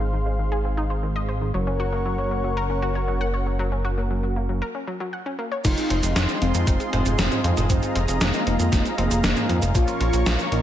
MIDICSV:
0, 0, Header, 1, 7, 480
1, 0, Start_track
1, 0, Tempo, 512821
1, 1444, Time_signature, 4, 2, 24, 8
1, 9941, End_track
2, 0, Start_track
2, 0, Title_t, "Analog synth pad"
2, 0, Program_c, 0, 89
2, 0, Note_on_c, 0, 68, 75
2, 0, Note_on_c, 0, 72, 71
2, 0, Note_on_c, 0, 77, 71
2, 0, Note_on_c, 0, 84, 84
2, 1406, Note_off_c, 0, 72, 0
2, 1407, Note_off_c, 0, 68, 0
2, 1407, Note_off_c, 0, 84, 0
2, 1424, Note_off_c, 0, 77, 0
2, 1440, Note_on_c, 0, 85, 87
2, 1441, Note_on_c, 0, 70, 79
2, 1441, Note_on_c, 0, 73, 70
2, 1442, Note_on_c, 0, 78, 69
2, 4294, Note_off_c, 0, 70, 0
2, 4294, Note_off_c, 0, 73, 0
2, 4294, Note_off_c, 0, 78, 0
2, 4294, Note_off_c, 0, 85, 0
2, 5286, Note_on_c, 0, 75, 75
2, 5286, Note_on_c, 0, 77, 73
2, 5287, Note_on_c, 0, 68, 80
2, 5287, Note_on_c, 0, 84, 91
2, 7186, Note_off_c, 0, 84, 0
2, 7202, Note_on_c, 0, 82, 89
2, 9088, Note_off_c, 0, 68, 0
2, 9088, Note_off_c, 0, 75, 0
2, 9104, Note_off_c, 0, 82, 0
2, 9125, Note_on_c, 0, 70, 82
2, 9125, Note_on_c, 0, 73, 73
2, 9125, Note_on_c, 0, 85, 89
2, 9941, Note_off_c, 0, 70, 0
2, 9941, Note_off_c, 0, 73, 0
2, 9941, Note_off_c, 0, 77, 0
2, 9941, Note_off_c, 0, 85, 0
2, 9941, End_track
3, 0, Start_track
3, 0, Title_t, "Analog polysynth"
3, 0, Program_c, 1, 90
3, 0, Note_on_c, 1, 44, 74
3, 0, Note_on_c, 1, 56, 68
3, 0, Note_on_c, 1, 60, 69
3, 0, Note_on_c, 1, 63, 70
3, 0, Note_on_c, 1, 68, 83
3, 1415, Note_off_c, 1, 44, 0
3, 1415, Note_off_c, 1, 56, 0
3, 1415, Note_off_c, 1, 60, 0
3, 1415, Note_off_c, 1, 63, 0
3, 1415, Note_off_c, 1, 68, 0
3, 1442, Note_on_c, 1, 61, 68
3, 1443, Note_on_c, 1, 58, 76
3, 1443, Note_on_c, 1, 66, 70
3, 1443, Note_on_c, 1, 70, 84
3, 4323, Note_off_c, 1, 61, 0
3, 4324, Note_off_c, 1, 58, 0
3, 4324, Note_off_c, 1, 66, 0
3, 4324, Note_off_c, 1, 70, 0
3, 5285, Note_on_c, 1, 63, 86
3, 5286, Note_on_c, 1, 56, 97
3, 5286, Note_on_c, 1, 60, 85
3, 5286, Note_on_c, 1, 65, 102
3, 5976, Note_off_c, 1, 56, 0
3, 5976, Note_off_c, 1, 60, 0
3, 5976, Note_off_c, 1, 63, 0
3, 5976, Note_off_c, 1, 65, 0
3, 6004, Note_on_c, 1, 56, 86
3, 6004, Note_on_c, 1, 60, 83
3, 6004, Note_on_c, 1, 63, 80
3, 6004, Note_on_c, 1, 65, 96
3, 6455, Note_off_c, 1, 63, 0
3, 6456, Note_off_c, 1, 56, 0
3, 6456, Note_off_c, 1, 60, 0
3, 6456, Note_off_c, 1, 65, 0
3, 6484, Note_on_c, 1, 60, 77
3, 6484, Note_on_c, 1, 63, 77
3, 6484, Note_on_c, 1, 65, 94
3, 6485, Note_on_c, 1, 56, 84
3, 7175, Note_off_c, 1, 65, 0
3, 7176, Note_off_c, 1, 56, 0
3, 7176, Note_off_c, 1, 60, 0
3, 7176, Note_off_c, 1, 63, 0
3, 7205, Note_on_c, 1, 56, 92
3, 7205, Note_on_c, 1, 65, 103
3, 7206, Note_on_c, 1, 60, 85
3, 7206, Note_on_c, 1, 63, 86
3, 7896, Note_off_c, 1, 56, 0
3, 7896, Note_off_c, 1, 60, 0
3, 7896, Note_off_c, 1, 63, 0
3, 7896, Note_off_c, 1, 65, 0
3, 7924, Note_on_c, 1, 65, 95
3, 7925, Note_on_c, 1, 56, 89
3, 7925, Note_on_c, 1, 60, 78
3, 7925, Note_on_c, 1, 63, 79
3, 8376, Note_off_c, 1, 56, 0
3, 8376, Note_off_c, 1, 60, 0
3, 8376, Note_off_c, 1, 63, 0
3, 8376, Note_off_c, 1, 65, 0
3, 8404, Note_on_c, 1, 56, 84
3, 8404, Note_on_c, 1, 60, 75
3, 8404, Note_on_c, 1, 63, 77
3, 8404, Note_on_c, 1, 65, 91
3, 9095, Note_off_c, 1, 56, 0
3, 9095, Note_off_c, 1, 60, 0
3, 9096, Note_off_c, 1, 63, 0
3, 9096, Note_off_c, 1, 65, 0
3, 9124, Note_on_c, 1, 46, 91
3, 9124, Note_on_c, 1, 58, 86
3, 9124, Note_on_c, 1, 61, 84
3, 9124, Note_on_c, 1, 65, 104
3, 9125, Note_on_c, 1, 53, 86
3, 9816, Note_off_c, 1, 46, 0
3, 9816, Note_off_c, 1, 53, 0
3, 9816, Note_off_c, 1, 58, 0
3, 9816, Note_off_c, 1, 61, 0
3, 9816, Note_off_c, 1, 65, 0
3, 9843, Note_on_c, 1, 46, 87
3, 9843, Note_on_c, 1, 53, 80
3, 9843, Note_on_c, 1, 58, 80
3, 9843, Note_on_c, 1, 61, 82
3, 9843, Note_on_c, 1, 65, 96
3, 9941, Note_off_c, 1, 46, 0
3, 9941, Note_off_c, 1, 53, 0
3, 9941, Note_off_c, 1, 58, 0
3, 9941, Note_off_c, 1, 61, 0
3, 9941, Note_off_c, 1, 65, 0
3, 9941, End_track
4, 0, Start_track
4, 0, Title_t, "Soft synth lead"
4, 0, Program_c, 2, 80
4, 5280, Note_on_c, 2, 63, 109
4, 5906, Note_off_c, 2, 63, 0
4, 6001, Note_on_c, 2, 60, 103
4, 6627, Note_off_c, 2, 60, 0
4, 6724, Note_on_c, 2, 60, 90
4, 6998, Note_off_c, 2, 60, 0
4, 7207, Note_on_c, 2, 60, 95
4, 7479, Note_off_c, 2, 60, 0
4, 7688, Note_on_c, 2, 58, 101
4, 8310, Note_off_c, 2, 58, 0
4, 8406, Note_on_c, 2, 58, 103
4, 9029, Note_off_c, 2, 58, 0
4, 9125, Note_on_c, 2, 65, 109
4, 9749, Note_off_c, 2, 65, 0
4, 9845, Note_on_c, 2, 63, 104
4, 9941, Note_off_c, 2, 63, 0
4, 9941, End_track
5, 0, Start_track
5, 0, Title_t, "Synth arpeggio sound"
5, 0, Program_c, 3, 84
5, 5, Note_on_c, 3, 51, 80
5, 112, Note_off_c, 3, 51, 0
5, 123, Note_on_c, 3, 51, 74
5, 220, Note_off_c, 3, 51, 0
5, 243, Note_on_c, 3, 56, 76
5, 302, Note_off_c, 3, 56, 0
5, 365, Note_on_c, 3, 51, 75
5, 461, Note_off_c, 3, 51, 0
5, 484, Note_on_c, 3, 68, 94
5, 581, Note_off_c, 3, 68, 0
5, 606, Note_on_c, 3, 60, 73
5, 702, Note_off_c, 3, 60, 0
5, 724, Note_on_c, 3, 63, 99
5, 782, Note_off_c, 3, 63, 0
5, 843, Note_on_c, 3, 72, 73
5, 940, Note_off_c, 3, 72, 0
5, 964, Note_on_c, 3, 51, 80
5, 1078, Note_off_c, 3, 51, 0
5, 1083, Note_on_c, 3, 75, 96
5, 1141, Note_off_c, 3, 75, 0
5, 1203, Note_on_c, 3, 72, 74
5, 1318, Note_off_c, 3, 72, 0
5, 1323, Note_on_c, 3, 51, 71
5, 1420, Note_off_c, 3, 51, 0
5, 1442, Note_on_c, 3, 54, 95
5, 1540, Note_off_c, 3, 54, 0
5, 1563, Note_on_c, 3, 61, 78
5, 1660, Note_off_c, 3, 61, 0
5, 1682, Note_on_c, 3, 66, 100
5, 1741, Note_off_c, 3, 66, 0
5, 1802, Note_on_c, 3, 58, 74
5, 1900, Note_off_c, 3, 58, 0
5, 1923, Note_on_c, 3, 54, 81
5, 2033, Note_off_c, 3, 54, 0
5, 2044, Note_on_c, 3, 54, 73
5, 2141, Note_off_c, 3, 54, 0
5, 2164, Note_on_c, 3, 58, 76
5, 2222, Note_off_c, 3, 58, 0
5, 2283, Note_on_c, 3, 54, 76
5, 2380, Note_off_c, 3, 54, 0
5, 2405, Note_on_c, 3, 70, 100
5, 2501, Note_off_c, 3, 70, 0
5, 2524, Note_on_c, 3, 61, 73
5, 2621, Note_off_c, 3, 61, 0
5, 2643, Note_on_c, 3, 66, 98
5, 2702, Note_off_c, 3, 66, 0
5, 2764, Note_on_c, 3, 73, 74
5, 2861, Note_off_c, 3, 73, 0
5, 2883, Note_on_c, 3, 54, 81
5, 2998, Note_off_c, 3, 54, 0
5, 3003, Note_on_c, 3, 78, 97
5, 3061, Note_off_c, 3, 78, 0
5, 3123, Note_on_c, 3, 73, 73
5, 3238, Note_off_c, 3, 73, 0
5, 3242, Note_on_c, 3, 54, 74
5, 3340, Note_off_c, 3, 54, 0
5, 3363, Note_on_c, 3, 54, 101
5, 3460, Note_off_c, 3, 54, 0
5, 3481, Note_on_c, 3, 61, 76
5, 3579, Note_off_c, 3, 61, 0
5, 3600, Note_on_c, 3, 66, 98
5, 3660, Note_off_c, 3, 66, 0
5, 3722, Note_on_c, 3, 58, 75
5, 3820, Note_off_c, 3, 58, 0
5, 3843, Note_on_c, 3, 54, 81
5, 3951, Note_off_c, 3, 54, 0
5, 3962, Note_on_c, 3, 54, 72
5, 4060, Note_off_c, 3, 54, 0
5, 4083, Note_on_c, 3, 58, 76
5, 4142, Note_off_c, 3, 58, 0
5, 4204, Note_on_c, 3, 54, 76
5, 4301, Note_off_c, 3, 54, 0
5, 4322, Note_on_c, 3, 70, 99
5, 4420, Note_off_c, 3, 70, 0
5, 4443, Note_on_c, 3, 61, 77
5, 4540, Note_off_c, 3, 61, 0
5, 4562, Note_on_c, 3, 54, 101
5, 4672, Note_off_c, 3, 54, 0
5, 4683, Note_on_c, 3, 54, 97
5, 4742, Note_off_c, 3, 54, 0
5, 4801, Note_on_c, 3, 78, 81
5, 4899, Note_off_c, 3, 78, 0
5, 4923, Note_on_c, 3, 61, 97
5, 5020, Note_off_c, 3, 61, 0
5, 5041, Note_on_c, 3, 58, 98
5, 5157, Note_off_c, 3, 58, 0
5, 5163, Note_on_c, 3, 73, 99
5, 5260, Note_off_c, 3, 73, 0
5, 5282, Note_on_c, 3, 51, 102
5, 5380, Note_off_c, 3, 51, 0
5, 5405, Note_on_c, 3, 56, 80
5, 5501, Note_off_c, 3, 56, 0
5, 5524, Note_on_c, 3, 60, 103
5, 5582, Note_off_c, 3, 60, 0
5, 5645, Note_on_c, 3, 53, 78
5, 5741, Note_off_c, 3, 53, 0
5, 5765, Note_on_c, 3, 51, 85
5, 5873, Note_off_c, 3, 51, 0
5, 5884, Note_on_c, 3, 51, 77
5, 5981, Note_off_c, 3, 51, 0
5, 6005, Note_on_c, 3, 53, 78
5, 6063, Note_off_c, 3, 53, 0
5, 6126, Note_on_c, 3, 51, 79
5, 6222, Note_off_c, 3, 51, 0
5, 6246, Note_on_c, 3, 63, 101
5, 6342, Note_off_c, 3, 63, 0
5, 6363, Note_on_c, 3, 56, 77
5, 6460, Note_off_c, 3, 56, 0
5, 6484, Note_on_c, 3, 60, 103
5, 6542, Note_off_c, 3, 60, 0
5, 6604, Note_on_c, 3, 65, 78
5, 6701, Note_off_c, 3, 65, 0
5, 6722, Note_on_c, 3, 51, 84
5, 6837, Note_off_c, 3, 51, 0
5, 6845, Note_on_c, 3, 68, 104
5, 6902, Note_off_c, 3, 68, 0
5, 6964, Note_on_c, 3, 65, 78
5, 7078, Note_off_c, 3, 65, 0
5, 7085, Note_on_c, 3, 51, 78
5, 7181, Note_off_c, 3, 51, 0
5, 7204, Note_on_c, 3, 51, 104
5, 7301, Note_off_c, 3, 51, 0
5, 7322, Note_on_c, 3, 56, 78
5, 7420, Note_off_c, 3, 56, 0
5, 7443, Note_on_c, 3, 60, 104
5, 7502, Note_off_c, 3, 60, 0
5, 7564, Note_on_c, 3, 53, 78
5, 7661, Note_off_c, 3, 53, 0
5, 7684, Note_on_c, 3, 51, 84
5, 7793, Note_off_c, 3, 51, 0
5, 7804, Note_on_c, 3, 51, 76
5, 7901, Note_off_c, 3, 51, 0
5, 7924, Note_on_c, 3, 53, 80
5, 7982, Note_off_c, 3, 53, 0
5, 8044, Note_on_c, 3, 51, 80
5, 8141, Note_off_c, 3, 51, 0
5, 8162, Note_on_c, 3, 63, 101
5, 8260, Note_off_c, 3, 63, 0
5, 8282, Note_on_c, 3, 56, 80
5, 8380, Note_off_c, 3, 56, 0
5, 8402, Note_on_c, 3, 60, 103
5, 8461, Note_off_c, 3, 60, 0
5, 8521, Note_on_c, 3, 65, 75
5, 8619, Note_off_c, 3, 65, 0
5, 8639, Note_on_c, 3, 51, 85
5, 8756, Note_off_c, 3, 51, 0
5, 8762, Note_on_c, 3, 68, 100
5, 8821, Note_off_c, 3, 68, 0
5, 8881, Note_on_c, 3, 65, 79
5, 8997, Note_off_c, 3, 65, 0
5, 9002, Note_on_c, 3, 51, 77
5, 9100, Note_off_c, 3, 51, 0
5, 9121, Note_on_c, 3, 53, 105
5, 9219, Note_off_c, 3, 53, 0
5, 9242, Note_on_c, 3, 61, 81
5, 9340, Note_off_c, 3, 61, 0
5, 9361, Note_on_c, 3, 65, 101
5, 9421, Note_off_c, 3, 65, 0
5, 9482, Note_on_c, 3, 58, 77
5, 9580, Note_off_c, 3, 58, 0
5, 9601, Note_on_c, 3, 53, 83
5, 9711, Note_off_c, 3, 53, 0
5, 9722, Note_on_c, 3, 53, 76
5, 9820, Note_off_c, 3, 53, 0
5, 9843, Note_on_c, 3, 58, 80
5, 9902, Note_off_c, 3, 58, 0
5, 9941, End_track
6, 0, Start_track
6, 0, Title_t, "Analog synth bass"
6, 0, Program_c, 4, 38
6, 0, Note_on_c, 4, 32, 87
6, 1421, Note_off_c, 4, 32, 0
6, 1443, Note_on_c, 4, 30, 87
6, 4324, Note_off_c, 4, 30, 0
6, 5285, Note_on_c, 4, 29, 102
6, 5385, Note_off_c, 4, 29, 0
6, 5523, Note_on_c, 4, 29, 93
6, 5624, Note_off_c, 4, 29, 0
6, 5644, Note_on_c, 4, 29, 80
6, 5745, Note_off_c, 4, 29, 0
6, 5764, Note_on_c, 4, 29, 103
6, 5864, Note_off_c, 4, 29, 0
6, 6004, Note_on_c, 4, 29, 97
6, 6104, Note_off_c, 4, 29, 0
6, 6126, Note_on_c, 4, 41, 83
6, 6225, Note_off_c, 4, 41, 0
6, 6244, Note_on_c, 4, 29, 107
6, 6344, Note_off_c, 4, 29, 0
6, 6484, Note_on_c, 4, 29, 93
6, 6584, Note_off_c, 4, 29, 0
6, 6605, Note_on_c, 4, 29, 84
6, 6705, Note_off_c, 4, 29, 0
6, 6723, Note_on_c, 4, 29, 100
6, 6824, Note_off_c, 4, 29, 0
6, 6964, Note_on_c, 4, 41, 97
6, 7064, Note_off_c, 4, 41, 0
6, 7084, Note_on_c, 4, 29, 85
6, 7185, Note_off_c, 4, 29, 0
6, 7205, Note_on_c, 4, 29, 104
6, 7305, Note_off_c, 4, 29, 0
6, 7445, Note_on_c, 4, 29, 95
6, 7545, Note_off_c, 4, 29, 0
6, 7564, Note_on_c, 4, 29, 82
6, 7664, Note_off_c, 4, 29, 0
6, 7683, Note_on_c, 4, 29, 107
6, 7784, Note_off_c, 4, 29, 0
6, 7924, Note_on_c, 4, 29, 96
6, 8025, Note_off_c, 4, 29, 0
6, 8043, Note_on_c, 4, 41, 83
6, 8144, Note_off_c, 4, 41, 0
6, 8164, Note_on_c, 4, 29, 103
6, 8264, Note_off_c, 4, 29, 0
6, 8405, Note_on_c, 4, 29, 95
6, 8505, Note_off_c, 4, 29, 0
6, 8525, Note_on_c, 4, 29, 82
6, 8625, Note_off_c, 4, 29, 0
6, 8645, Note_on_c, 4, 29, 105
6, 8745, Note_off_c, 4, 29, 0
6, 8885, Note_on_c, 4, 41, 98
6, 8985, Note_off_c, 4, 41, 0
6, 9004, Note_on_c, 4, 29, 84
6, 9105, Note_off_c, 4, 29, 0
6, 9125, Note_on_c, 4, 34, 103
6, 9225, Note_off_c, 4, 34, 0
6, 9364, Note_on_c, 4, 34, 96
6, 9464, Note_off_c, 4, 34, 0
6, 9483, Note_on_c, 4, 34, 83
6, 9584, Note_off_c, 4, 34, 0
6, 9604, Note_on_c, 4, 34, 103
6, 9704, Note_off_c, 4, 34, 0
6, 9843, Note_on_c, 4, 34, 95
6, 9941, Note_off_c, 4, 34, 0
6, 9941, End_track
7, 0, Start_track
7, 0, Title_t, "Drums"
7, 5285, Note_on_c, 9, 36, 122
7, 5286, Note_on_c, 9, 42, 83
7, 5286, Note_on_c, 9, 49, 108
7, 5286, Note_on_c, 9, 69, 53
7, 5378, Note_off_c, 9, 36, 0
7, 5380, Note_off_c, 9, 42, 0
7, 5380, Note_off_c, 9, 49, 0
7, 5380, Note_off_c, 9, 69, 0
7, 5407, Note_on_c, 9, 42, 39
7, 5407, Note_on_c, 9, 69, 31
7, 5500, Note_off_c, 9, 42, 0
7, 5500, Note_off_c, 9, 69, 0
7, 5526, Note_on_c, 9, 42, 86
7, 5619, Note_off_c, 9, 42, 0
7, 5646, Note_on_c, 9, 42, 56
7, 5646, Note_on_c, 9, 69, 62
7, 5739, Note_off_c, 9, 42, 0
7, 5739, Note_off_c, 9, 69, 0
7, 5766, Note_on_c, 9, 38, 122
7, 5766, Note_on_c, 9, 42, 82
7, 5766, Note_on_c, 9, 69, 52
7, 5860, Note_off_c, 9, 38, 0
7, 5860, Note_off_c, 9, 42, 0
7, 5860, Note_off_c, 9, 69, 0
7, 5887, Note_on_c, 9, 42, 39
7, 5887, Note_on_c, 9, 69, 31
7, 5981, Note_off_c, 9, 42, 0
7, 5981, Note_off_c, 9, 69, 0
7, 6007, Note_on_c, 9, 42, 82
7, 6100, Note_off_c, 9, 42, 0
7, 6128, Note_on_c, 9, 42, 57
7, 6128, Note_on_c, 9, 69, 65
7, 6221, Note_off_c, 9, 42, 0
7, 6221, Note_off_c, 9, 69, 0
7, 6245, Note_on_c, 9, 36, 117
7, 6245, Note_on_c, 9, 42, 85
7, 6245, Note_on_c, 9, 69, 52
7, 6338, Note_off_c, 9, 36, 0
7, 6339, Note_off_c, 9, 42, 0
7, 6339, Note_off_c, 9, 69, 0
7, 6366, Note_on_c, 9, 42, 39
7, 6366, Note_on_c, 9, 69, 32
7, 6459, Note_off_c, 9, 42, 0
7, 6459, Note_off_c, 9, 69, 0
7, 6487, Note_on_c, 9, 42, 86
7, 6487, Note_on_c, 9, 45, 94
7, 6580, Note_off_c, 9, 42, 0
7, 6580, Note_off_c, 9, 45, 0
7, 6607, Note_on_c, 9, 42, 54
7, 6607, Note_on_c, 9, 69, 62
7, 6700, Note_off_c, 9, 42, 0
7, 6700, Note_off_c, 9, 69, 0
7, 6727, Note_on_c, 9, 38, 119
7, 6727, Note_on_c, 9, 42, 82
7, 6727, Note_on_c, 9, 69, 50
7, 6821, Note_off_c, 9, 38, 0
7, 6821, Note_off_c, 9, 42, 0
7, 6821, Note_off_c, 9, 69, 0
7, 6848, Note_on_c, 9, 42, 38
7, 6848, Note_on_c, 9, 45, 64
7, 6848, Note_on_c, 9, 69, 31
7, 6942, Note_off_c, 9, 42, 0
7, 6942, Note_off_c, 9, 45, 0
7, 6942, Note_off_c, 9, 69, 0
7, 6967, Note_on_c, 9, 42, 87
7, 7061, Note_off_c, 9, 42, 0
7, 7088, Note_on_c, 9, 42, 55
7, 7088, Note_on_c, 9, 45, 94
7, 7088, Note_on_c, 9, 69, 61
7, 7182, Note_off_c, 9, 42, 0
7, 7182, Note_off_c, 9, 45, 0
7, 7182, Note_off_c, 9, 69, 0
7, 7204, Note_on_c, 9, 36, 125
7, 7206, Note_on_c, 9, 42, 84
7, 7206, Note_on_c, 9, 69, 52
7, 7298, Note_off_c, 9, 36, 0
7, 7299, Note_off_c, 9, 42, 0
7, 7299, Note_off_c, 9, 69, 0
7, 7327, Note_on_c, 9, 42, 38
7, 7327, Note_on_c, 9, 69, 29
7, 7420, Note_off_c, 9, 42, 0
7, 7420, Note_off_c, 9, 69, 0
7, 7446, Note_on_c, 9, 42, 85
7, 7539, Note_off_c, 9, 42, 0
7, 7566, Note_on_c, 9, 42, 57
7, 7566, Note_on_c, 9, 69, 59
7, 7660, Note_off_c, 9, 42, 0
7, 7660, Note_off_c, 9, 69, 0
7, 7686, Note_on_c, 9, 38, 127
7, 7686, Note_on_c, 9, 42, 85
7, 7686, Note_on_c, 9, 69, 52
7, 7779, Note_off_c, 9, 38, 0
7, 7779, Note_off_c, 9, 42, 0
7, 7779, Note_off_c, 9, 69, 0
7, 7806, Note_on_c, 9, 42, 39
7, 7806, Note_on_c, 9, 69, 31
7, 7899, Note_off_c, 9, 42, 0
7, 7899, Note_off_c, 9, 69, 0
7, 7926, Note_on_c, 9, 42, 82
7, 8020, Note_off_c, 9, 42, 0
7, 8046, Note_on_c, 9, 42, 59
7, 8046, Note_on_c, 9, 69, 63
7, 8139, Note_off_c, 9, 42, 0
7, 8139, Note_off_c, 9, 69, 0
7, 8164, Note_on_c, 9, 36, 123
7, 8168, Note_on_c, 9, 38, 67
7, 8168, Note_on_c, 9, 42, 88
7, 8168, Note_on_c, 9, 69, 53
7, 8258, Note_off_c, 9, 36, 0
7, 8261, Note_off_c, 9, 38, 0
7, 8261, Note_off_c, 9, 42, 0
7, 8261, Note_off_c, 9, 69, 0
7, 8289, Note_on_c, 9, 42, 40
7, 8289, Note_on_c, 9, 69, 31
7, 8382, Note_off_c, 9, 42, 0
7, 8382, Note_off_c, 9, 69, 0
7, 8408, Note_on_c, 9, 42, 84
7, 8502, Note_off_c, 9, 42, 0
7, 8528, Note_on_c, 9, 42, 57
7, 8528, Note_on_c, 9, 69, 61
7, 8622, Note_off_c, 9, 42, 0
7, 8622, Note_off_c, 9, 69, 0
7, 8648, Note_on_c, 9, 38, 122
7, 8648, Note_on_c, 9, 42, 82
7, 8648, Note_on_c, 9, 69, 50
7, 8741, Note_off_c, 9, 38, 0
7, 8741, Note_off_c, 9, 42, 0
7, 8741, Note_off_c, 9, 69, 0
7, 8766, Note_on_c, 9, 42, 40
7, 8766, Note_on_c, 9, 45, 61
7, 8766, Note_on_c, 9, 69, 31
7, 8860, Note_off_c, 9, 42, 0
7, 8860, Note_off_c, 9, 45, 0
7, 8860, Note_off_c, 9, 69, 0
7, 8887, Note_on_c, 9, 42, 86
7, 8980, Note_off_c, 9, 42, 0
7, 9007, Note_on_c, 9, 42, 54
7, 9007, Note_on_c, 9, 69, 62
7, 9100, Note_off_c, 9, 42, 0
7, 9100, Note_off_c, 9, 69, 0
7, 9124, Note_on_c, 9, 36, 127
7, 9127, Note_on_c, 9, 42, 83
7, 9127, Note_on_c, 9, 69, 50
7, 9218, Note_off_c, 9, 36, 0
7, 9221, Note_off_c, 9, 42, 0
7, 9221, Note_off_c, 9, 69, 0
7, 9246, Note_on_c, 9, 42, 37
7, 9246, Note_on_c, 9, 69, 28
7, 9340, Note_off_c, 9, 42, 0
7, 9340, Note_off_c, 9, 69, 0
7, 9366, Note_on_c, 9, 42, 84
7, 9459, Note_off_c, 9, 42, 0
7, 9485, Note_on_c, 9, 42, 53
7, 9485, Note_on_c, 9, 69, 59
7, 9579, Note_off_c, 9, 42, 0
7, 9579, Note_off_c, 9, 69, 0
7, 9607, Note_on_c, 9, 38, 127
7, 9607, Note_on_c, 9, 42, 85
7, 9607, Note_on_c, 9, 69, 50
7, 9700, Note_off_c, 9, 38, 0
7, 9700, Note_off_c, 9, 42, 0
7, 9700, Note_off_c, 9, 69, 0
7, 9726, Note_on_c, 9, 42, 38
7, 9726, Note_on_c, 9, 69, 29
7, 9820, Note_off_c, 9, 42, 0
7, 9820, Note_off_c, 9, 69, 0
7, 9847, Note_on_c, 9, 42, 80
7, 9941, Note_off_c, 9, 42, 0
7, 9941, End_track
0, 0, End_of_file